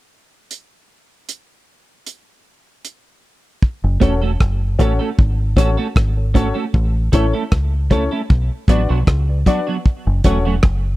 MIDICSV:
0, 0, Header, 1, 5, 480
1, 0, Start_track
1, 0, Tempo, 779626
1, 310, Time_signature, 4, 2, 24, 8
1, 6752, End_track
2, 0, Start_track
2, 0, Title_t, "Upright piano"
2, 0, Program_c, 0, 0
2, 2470, Note_on_c, 0, 61, 87
2, 2473, Note_on_c, 0, 66, 79
2, 2475, Note_on_c, 0, 69, 80
2, 2478, Note_on_c, 0, 73, 90
2, 2576, Note_off_c, 0, 61, 0
2, 2577, Note_off_c, 0, 66, 0
2, 2578, Note_off_c, 0, 69, 0
2, 2580, Note_off_c, 0, 73, 0
2, 2947, Note_on_c, 0, 61, 91
2, 2949, Note_on_c, 0, 66, 81
2, 2950, Note_on_c, 0, 69, 77
2, 2954, Note_on_c, 0, 73, 94
2, 3054, Note_off_c, 0, 61, 0
2, 3055, Note_off_c, 0, 66, 0
2, 3056, Note_off_c, 0, 69, 0
2, 3058, Note_off_c, 0, 73, 0
2, 3427, Note_on_c, 0, 61, 86
2, 3431, Note_on_c, 0, 66, 74
2, 3434, Note_on_c, 0, 69, 74
2, 3435, Note_on_c, 0, 73, 86
2, 3534, Note_off_c, 0, 61, 0
2, 3536, Note_off_c, 0, 66, 0
2, 3537, Note_off_c, 0, 69, 0
2, 3538, Note_off_c, 0, 73, 0
2, 3798, Note_on_c, 0, 69, 25
2, 3798, Note_on_c, 0, 73, 28
2, 3842, Note_off_c, 0, 69, 0
2, 3842, Note_off_c, 0, 73, 0
2, 3909, Note_on_c, 0, 61, 91
2, 3910, Note_on_c, 0, 66, 84
2, 3915, Note_on_c, 0, 69, 80
2, 3919, Note_on_c, 0, 73, 102
2, 4015, Note_off_c, 0, 61, 0
2, 4016, Note_off_c, 0, 66, 0
2, 4018, Note_off_c, 0, 69, 0
2, 4020, Note_off_c, 0, 73, 0
2, 4391, Note_on_c, 0, 61, 79
2, 4393, Note_on_c, 0, 64, 75
2, 4397, Note_on_c, 0, 69, 77
2, 4397, Note_on_c, 0, 73, 93
2, 4496, Note_off_c, 0, 61, 0
2, 4497, Note_off_c, 0, 64, 0
2, 4499, Note_off_c, 0, 69, 0
2, 4499, Note_off_c, 0, 73, 0
2, 4869, Note_on_c, 0, 61, 95
2, 4873, Note_on_c, 0, 64, 76
2, 4875, Note_on_c, 0, 69, 79
2, 4877, Note_on_c, 0, 73, 99
2, 4975, Note_off_c, 0, 61, 0
2, 4977, Note_off_c, 0, 64, 0
2, 4978, Note_off_c, 0, 69, 0
2, 4979, Note_off_c, 0, 73, 0
2, 5352, Note_on_c, 0, 62, 84
2, 5355, Note_on_c, 0, 66, 80
2, 5357, Note_on_c, 0, 71, 77
2, 5359, Note_on_c, 0, 74, 92
2, 5456, Note_off_c, 0, 62, 0
2, 5458, Note_off_c, 0, 66, 0
2, 5459, Note_off_c, 0, 71, 0
2, 5460, Note_off_c, 0, 74, 0
2, 5720, Note_on_c, 0, 71, 25
2, 5720, Note_on_c, 0, 74, 28
2, 5763, Note_off_c, 0, 71, 0
2, 5763, Note_off_c, 0, 74, 0
2, 5829, Note_on_c, 0, 62, 88
2, 5831, Note_on_c, 0, 66, 85
2, 5833, Note_on_c, 0, 71, 80
2, 5835, Note_on_c, 0, 74, 107
2, 5935, Note_off_c, 0, 62, 0
2, 5936, Note_off_c, 0, 66, 0
2, 5937, Note_off_c, 0, 71, 0
2, 5937, Note_off_c, 0, 74, 0
2, 6308, Note_on_c, 0, 61, 88
2, 6311, Note_on_c, 0, 66, 77
2, 6313, Note_on_c, 0, 69, 79
2, 6315, Note_on_c, 0, 73, 99
2, 6414, Note_off_c, 0, 61, 0
2, 6416, Note_off_c, 0, 66, 0
2, 6416, Note_off_c, 0, 69, 0
2, 6418, Note_off_c, 0, 73, 0
2, 6752, End_track
3, 0, Start_track
3, 0, Title_t, "Clean electric guitar"
3, 0, Program_c, 1, 27
3, 2464, Note_on_c, 1, 57, 74
3, 2472, Note_on_c, 1, 61, 78
3, 2474, Note_on_c, 1, 66, 82
3, 2478, Note_on_c, 1, 69, 86
3, 2540, Note_off_c, 1, 57, 0
3, 2544, Note_off_c, 1, 61, 0
3, 2545, Note_off_c, 1, 66, 0
3, 2548, Note_off_c, 1, 69, 0
3, 2596, Note_on_c, 1, 69, 63
3, 2600, Note_on_c, 1, 66, 53
3, 2603, Note_on_c, 1, 61, 52
3, 2606, Note_on_c, 1, 57, 47
3, 2648, Note_off_c, 1, 69, 0
3, 2651, Note_off_c, 1, 66, 0
3, 2652, Note_off_c, 1, 61, 0
3, 2654, Note_off_c, 1, 57, 0
3, 2956, Note_on_c, 1, 57, 78
3, 2961, Note_on_c, 1, 61, 88
3, 2962, Note_on_c, 1, 66, 88
3, 2966, Note_on_c, 1, 69, 88
3, 3027, Note_off_c, 1, 57, 0
3, 3029, Note_off_c, 1, 61, 0
3, 3030, Note_off_c, 1, 66, 0
3, 3032, Note_off_c, 1, 69, 0
3, 3073, Note_on_c, 1, 69, 64
3, 3082, Note_on_c, 1, 66, 57
3, 3084, Note_on_c, 1, 61, 51
3, 3086, Note_on_c, 1, 57, 57
3, 3127, Note_off_c, 1, 69, 0
3, 3132, Note_off_c, 1, 66, 0
3, 3133, Note_off_c, 1, 61, 0
3, 3134, Note_off_c, 1, 57, 0
3, 3427, Note_on_c, 1, 57, 67
3, 3432, Note_on_c, 1, 61, 76
3, 3434, Note_on_c, 1, 66, 81
3, 3438, Note_on_c, 1, 69, 85
3, 3502, Note_off_c, 1, 57, 0
3, 3505, Note_off_c, 1, 61, 0
3, 3506, Note_off_c, 1, 66, 0
3, 3507, Note_off_c, 1, 69, 0
3, 3555, Note_on_c, 1, 69, 67
3, 3559, Note_on_c, 1, 66, 64
3, 3564, Note_on_c, 1, 57, 52
3, 3565, Note_on_c, 1, 61, 59
3, 3608, Note_off_c, 1, 69, 0
3, 3610, Note_off_c, 1, 66, 0
3, 3612, Note_off_c, 1, 57, 0
3, 3613, Note_off_c, 1, 61, 0
3, 3905, Note_on_c, 1, 57, 73
3, 3910, Note_on_c, 1, 61, 86
3, 3915, Note_on_c, 1, 66, 84
3, 3917, Note_on_c, 1, 69, 81
3, 3981, Note_off_c, 1, 57, 0
3, 3983, Note_off_c, 1, 61, 0
3, 3986, Note_off_c, 1, 66, 0
3, 3987, Note_off_c, 1, 69, 0
3, 4028, Note_on_c, 1, 69, 67
3, 4032, Note_on_c, 1, 66, 57
3, 4035, Note_on_c, 1, 61, 47
3, 4038, Note_on_c, 1, 57, 53
3, 4084, Note_off_c, 1, 69, 0
3, 4086, Note_off_c, 1, 66, 0
3, 4088, Note_off_c, 1, 61, 0
3, 4089, Note_off_c, 1, 57, 0
3, 4386, Note_on_c, 1, 57, 75
3, 4391, Note_on_c, 1, 61, 77
3, 4392, Note_on_c, 1, 64, 77
3, 4396, Note_on_c, 1, 69, 93
3, 4461, Note_off_c, 1, 57, 0
3, 4464, Note_off_c, 1, 61, 0
3, 4465, Note_off_c, 1, 64, 0
3, 4467, Note_off_c, 1, 69, 0
3, 4515, Note_on_c, 1, 69, 52
3, 4520, Note_on_c, 1, 61, 49
3, 4521, Note_on_c, 1, 64, 55
3, 4523, Note_on_c, 1, 57, 44
3, 4568, Note_off_c, 1, 69, 0
3, 4570, Note_off_c, 1, 61, 0
3, 4571, Note_off_c, 1, 64, 0
3, 4572, Note_off_c, 1, 57, 0
3, 4867, Note_on_c, 1, 57, 78
3, 4872, Note_on_c, 1, 61, 85
3, 4876, Note_on_c, 1, 64, 83
3, 4877, Note_on_c, 1, 69, 88
3, 4942, Note_off_c, 1, 57, 0
3, 4945, Note_off_c, 1, 61, 0
3, 4946, Note_off_c, 1, 64, 0
3, 4947, Note_off_c, 1, 69, 0
3, 4994, Note_on_c, 1, 69, 61
3, 4999, Note_on_c, 1, 64, 62
3, 5001, Note_on_c, 1, 61, 53
3, 5005, Note_on_c, 1, 57, 47
3, 5047, Note_off_c, 1, 69, 0
3, 5050, Note_off_c, 1, 64, 0
3, 5051, Note_off_c, 1, 61, 0
3, 5053, Note_off_c, 1, 57, 0
3, 5347, Note_on_c, 1, 54, 83
3, 5352, Note_on_c, 1, 59, 89
3, 5356, Note_on_c, 1, 62, 78
3, 5358, Note_on_c, 1, 66, 91
3, 5422, Note_off_c, 1, 54, 0
3, 5424, Note_off_c, 1, 59, 0
3, 5426, Note_off_c, 1, 62, 0
3, 5427, Note_off_c, 1, 66, 0
3, 5474, Note_on_c, 1, 66, 64
3, 5476, Note_on_c, 1, 62, 59
3, 5480, Note_on_c, 1, 59, 60
3, 5484, Note_on_c, 1, 54, 55
3, 5527, Note_off_c, 1, 66, 0
3, 5528, Note_off_c, 1, 62, 0
3, 5530, Note_off_c, 1, 59, 0
3, 5532, Note_off_c, 1, 54, 0
3, 5826, Note_on_c, 1, 54, 72
3, 5831, Note_on_c, 1, 59, 84
3, 5834, Note_on_c, 1, 62, 84
3, 5837, Note_on_c, 1, 66, 75
3, 5901, Note_off_c, 1, 54, 0
3, 5904, Note_off_c, 1, 59, 0
3, 5905, Note_off_c, 1, 62, 0
3, 5907, Note_off_c, 1, 66, 0
3, 5952, Note_on_c, 1, 66, 53
3, 5954, Note_on_c, 1, 62, 49
3, 5961, Note_on_c, 1, 59, 44
3, 5962, Note_on_c, 1, 54, 48
3, 6006, Note_off_c, 1, 66, 0
3, 6007, Note_off_c, 1, 62, 0
3, 6011, Note_off_c, 1, 54, 0
3, 6011, Note_off_c, 1, 59, 0
3, 6309, Note_on_c, 1, 54, 72
3, 6314, Note_on_c, 1, 57, 84
3, 6314, Note_on_c, 1, 61, 82
3, 6317, Note_on_c, 1, 66, 81
3, 6382, Note_off_c, 1, 54, 0
3, 6385, Note_off_c, 1, 57, 0
3, 6385, Note_off_c, 1, 61, 0
3, 6387, Note_off_c, 1, 66, 0
3, 6435, Note_on_c, 1, 66, 64
3, 6442, Note_on_c, 1, 57, 59
3, 6442, Note_on_c, 1, 61, 65
3, 6446, Note_on_c, 1, 54, 53
3, 6488, Note_off_c, 1, 66, 0
3, 6491, Note_off_c, 1, 57, 0
3, 6491, Note_off_c, 1, 61, 0
3, 6493, Note_off_c, 1, 54, 0
3, 6752, End_track
4, 0, Start_track
4, 0, Title_t, "Fingered electric bass"
4, 0, Program_c, 2, 33
4, 2364, Note_on_c, 2, 30, 86
4, 2463, Note_off_c, 2, 30, 0
4, 2475, Note_on_c, 2, 28, 78
4, 2689, Note_off_c, 2, 28, 0
4, 2715, Note_on_c, 2, 30, 77
4, 2929, Note_off_c, 2, 30, 0
4, 2955, Note_on_c, 2, 33, 87
4, 3065, Note_off_c, 2, 33, 0
4, 3199, Note_on_c, 2, 32, 97
4, 3411, Note_off_c, 2, 32, 0
4, 3431, Note_on_c, 2, 33, 87
4, 3542, Note_off_c, 2, 33, 0
4, 3672, Note_on_c, 2, 32, 92
4, 4011, Note_off_c, 2, 32, 0
4, 4153, Note_on_c, 2, 33, 99
4, 4368, Note_off_c, 2, 33, 0
4, 4392, Note_on_c, 2, 33, 90
4, 4503, Note_off_c, 2, 33, 0
4, 4633, Note_on_c, 2, 37, 70
4, 4971, Note_off_c, 2, 37, 0
4, 5116, Note_on_c, 2, 35, 92
4, 5225, Note_off_c, 2, 35, 0
4, 5348, Note_on_c, 2, 33, 82
4, 5461, Note_off_c, 2, 33, 0
4, 5481, Note_on_c, 2, 35, 87
4, 5582, Note_off_c, 2, 35, 0
4, 5589, Note_on_c, 2, 37, 85
4, 5805, Note_off_c, 2, 37, 0
4, 6199, Note_on_c, 2, 30, 91
4, 6300, Note_off_c, 2, 30, 0
4, 6311, Note_on_c, 2, 28, 80
4, 6526, Note_off_c, 2, 28, 0
4, 6552, Note_on_c, 2, 30, 87
4, 6752, Note_off_c, 2, 30, 0
4, 6752, End_track
5, 0, Start_track
5, 0, Title_t, "Drums"
5, 313, Note_on_c, 9, 42, 53
5, 374, Note_off_c, 9, 42, 0
5, 792, Note_on_c, 9, 42, 61
5, 854, Note_off_c, 9, 42, 0
5, 1271, Note_on_c, 9, 42, 55
5, 1333, Note_off_c, 9, 42, 0
5, 1752, Note_on_c, 9, 42, 55
5, 1814, Note_off_c, 9, 42, 0
5, 2232, Note_on_c, 9, 36, 94
5, 2293, Note_off_c, 9, 36, 0
5, 2472, Note_on_c, 9, 36, 89
5, 2474, Note_on_c, 9, 42, 77
5, 2534, Note_off_c, 9, 36, 0
5, 2535, Note_off_c, 9, 42, 0
5, 2712, Note_on_c, 9, 36, 117
5, 2712, Note_on_c, 9, 37, 114
5, 2773, Note_off_c, 9, 36, 0
5, 2774, Note_off_c, 9, 37, 0
5, 2951, Note_on_c, 9, 36, 77
5, 2955, Note_on_c, 9, 42, 58
5, 3013, Note_off_c, 9, 36, 0
5, 3017, Note_off_c, 9, 42, 0
5, 3193, Note_on_c, 9, 36, 112
5, 3255, Note_off_c, 9, 36, 0
5, 3427, Note_on_c, 9, 36, 87
5, 3437, Note_on_c, 9, 37, 60
5, 3437, Note_on_c, 9, 42, 66
5, 3488, Note_off_c, 9, 36, 0
5, 3498, Note_off_c, 9, 37, 0
5, 3498, Note_off_c, 9, 42, 0
5, 3669, Note_on_c, 9, 36, 108
5, 3675, Note_on_c, 9, 37, 114
5, 3730, Note_off_c, 9, 36, 0
5, 3736, Note_off_c, 9, 37, 0
5, 3910, Note_on_c, 9, 36, 82
5, 3916, Note_on_c, 9, 42, 62
5, 3971, Note_off_c, 9, 36, 0
5, 3977, Note_off_c, 9, 42, 0
5, 4150, Note_on_c, 9, 36, 83
5, 4212, Note_off_c, 9, 36, 0
5, 4389, Note_on_c, 9, 42, 78
5, 4390, Note_on_c, 9, 36, 91
5, 4450, Note_off_c, 9, 42, 0
5, 4451, Note_off_c, 9, 36, 0
5, 4629, Note_on_c, 9, 37, 123
5, 4630, Note_on_c, 9, 36, 112
5, 4690, Note_off_c, 9, 37, 0
5, 4691, Note_off_c, 9, 36, 0
5, 4869, Note_on_c, 9, 36, 86
5, 4870, Note_on_c, 9, 42, 56
5, 4930, Note_off_c, 9, 36, 0
5, 4932, Note_off_c, 9, 42, 0
5, 5111, Note_on_c, 9, 36, 115
5, 5172, Note_off_c, 9, 36, 0
5, 5344, Note_on_c, 9, 36, 87
5, 5351, Note_on_c, 9, 37, 60
5, 5351, Note_on_c, 9, 42, 65
5, 5405, Note_off_c, 9, 36, 0
5, 5413, Note_off_c, 9, 37, 0
5, 5413, Note_off_c, 9, 42, 0
5, 5586, Note_on_c, 9, 36, 111
5, 5589, Note_on_c, 9, 37, 112
5, 5647, Note_off_c, 9, 36, 0
5, 5651, Note_off_c, 9, 37, 0
5, 5826, Note_on_c, 9, 36, 84
5, 5830, Note_on_c, 9, 42, 64
5, 5888, Note_off_c, 9, 36, 0
5, 5892, Note_off_c, 9, 42, 0
5, 6068, Note_on_c, 9, 36, 89
5, 6129, Note_off_c, 9, 36, 0
5, 6305, Note_on_c, 9, 42, 76
5, 6307, Note_on_c, 9, 36, 91
5, 6367, Note_off_c, 9, 42, 0
5, 6369, Note_off_c, 9, 36, 0
5, 6544, Note_on_c, 9, 37, 120
5, 6548, Note_on_c, 9, 36, 110
5, 6605, Note_off_c, 9, 37, 0
5, 6609, Note_off_c, 9, 36, 0
5, 6752, End_track
0, 0, End_of_file